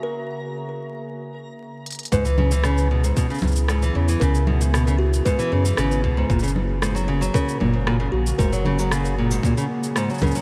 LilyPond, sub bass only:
\new Staff \with { instrumentName = "Sub bass" } { \clef bass \time 4/4 \key cis \dorian \tempo 4 = 115 r1 | cis,2 r8 cis,4 e,8 | cis,2 r8 fis,8 gis,,8 cis,8 | fis,,2 r8 fis,,4 ais,,8 |
fis,,2 r4. cis,8 | }